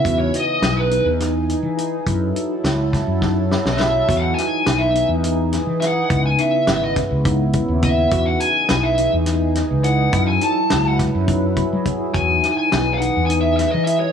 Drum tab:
HH |x-x-x-x-x-x-x-|x-x-x-x-------|x-x-x-x-x-x-x-|x-x-x-x-x-x-x-|
SD |----o---o-----|----o-o-o-ooo-|--o-o-----o-o-|----o-o-------|
BD |o-------------|o-----o-o-----|o-------------|o-----o-o-o-o-|

HH |x-x-x-x-x-x-x-|x-x-x-x-x-x-x-|x-x-x-x-x-x-x-|
SD |----o---o-o---|----o-o-------|--o-o-----o---|
BD |o-------------|o-----o-o-o-o-|o-------------|